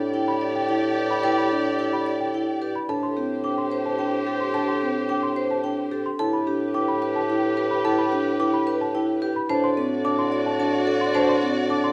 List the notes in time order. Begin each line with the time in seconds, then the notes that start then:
Already playing: A2 G4 D5
0.14 E4 G5
0.28 B5
0.41 D5
0.55 G5
0.69 E4 G5
0.96 G4 B4
1.10 B5
1.23 E4 B4 G5
1.38 B5
1.51 D4 G4
1.79 E4 G5
1.93 B5
2.06 D5
2.20 G5
2.34 E4 G5
2.62 G4 B4
2.76 B5
2.89 A2 D4 G4 A4 C5 A5
3.03 C6
3.17 C4 G4
3.44 D4 G5 D6
3.58 C6
3.71 C5
3.86 A5
3.99 D4 G5
4.27 G4 A4
4.41 C6
4.54 D4 A4 A5
4.68 C6
4.82 C4 G4
5.09 D4 G5 D6
5.23 C6
5.36 C5
5.51 A5
5.64 D4 G5
5.92 G4 A4
6.06 C6
6.19 A2 E4 G4 A4 B4 A5
6.33 B5
6.47 D4 G4
6.74 E4 G5 D6
6.88 B5
7.02 B4
7.16 A5
7.30 E4 G5
7.57 G4 B4
7.71 B5
7.85 E4 A4 A5
7.98 B5
8.12 D4 G4
8.40 E4 G5 D6
8.54 B5
8.67 B4
8.81 A5
8.95 E4 G5
9.22 G4 B4
9.36 B5
9.49 A2 D4 F#4 C5 D5 A5
9.64 C6
9.77 C4 A4
10.05 D4 A5 D6
10.19 C6
10.32 D5
10.46 A5
10.60 D4 A5
10.87 A4
11.01 C6
11.14 D4 C5 A5
11.29 C6
11.42 C4 A4
11.70 D4 A5 D6
11.84 C6